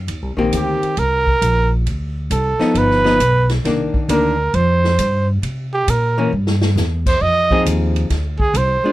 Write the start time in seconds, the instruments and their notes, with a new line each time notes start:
0.07 upright bass D#2, kick, ride
0.22 upright bass C2
0.37 upright bass A#1, hollow-body jazz guitar D#3 A#3 C4 G4
0.52 upright bass D2, trumpet G4, kick, hi-hat pedal, ride
0.82 muted upright bass stroke, ride
0.97 upright bass C2, trumpet A#4, kick, ride
1.27 kick
1.42 upright bass A#1, kick, hi-hat pedal, ride
1.86 upright bass D2, kick, ride
2.30 upright bass C2, trumpet A4, kick, hi-hat pedal, ride
2.59 hollow-body jazz guitar F3 B3 D#4, muted upright bass stroke, snare
2.75 upright bass G1, trumpet B4, kick, ride
2.90 snare
3.04 hollow-body jazz guitar F3 B3 D#4, snare
3.20 upright bass B1, kick, hi-hat pedal, ride
3.49 snare, ride
3.65 upright bass C2, hollow-body jazz guitar D#3 A#3 D4, kick, snare, ride
3.93 muted upright bass stroke, kick
4.09 upright bass D2, hollow-body jazz guitar D#3 A#3 D4, trumpet A#4, kick, hi-hat pedal, ride
4.54 upright bass F2, trumpet C5, kick, ride
4.84 snare
4.98 upright bass G2, kick, hi-hat pedal, ride
5.42 upright bass C3, kick, ride
5.74 trumpet G4
5.87 upright bass A#2, trumpet A#4, kick, hi-hat pedal, ride
6.18 hollow-body jazz guitar E3 A#3 C#4
6.32 upright bass G2
6.47 snare
6.61 snare
6.76 upright bass E2, snare, hi-hat pedal
7.06 trumpet C5, kick, crash
7.21 upright bass F2, trumpet D#5, kick
7.51 hollow-body jazz guitar F3 C4 D#4 G#4, kick
7.65 upright bass D#2, kick, hi-hat pedal, ride
7.96 ride
8.10 upright bass D2, kick, snare, ride
8.39 trumpet G#4, kick
8.54 upright bass C2, trumpet C5, kick, hi-hat pedal, ride
8.83 hollow-body jazz guitar G#3 D4 F4, muted upright bass stroke